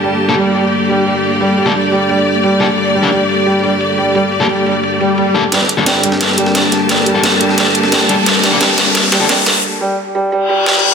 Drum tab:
RD |----------------|----------------|----------------|----------------|
HH |x-x-x-x-x-x-x-x-|x-x-x-x-x-x-x-x-|x-x-x-x-x-x-x-x-|x-x-x-x-x-x-x-x-|
SD |----------------|----------------|----------------|----------------|
T1 |----------------|----------------|----------------|----------------|

RD |x-x-x-x-x-x-x-x-|x-x-x-x-x-x-xxx-|x-x-x-x-x-x-x-x-|----------------|
HH |x-x-x-x-x-x-x-x-|x-x-x-x-x-x-x-x-|x-x-x-x-x-x-x-x-|----------------|
SD |oo--oo-ooo-oo-o-|oo--oo-oo--oo---|ooo-ooooooooo-o-|------------o---|
T1 |----------------|----------------|----------------|-------------o--|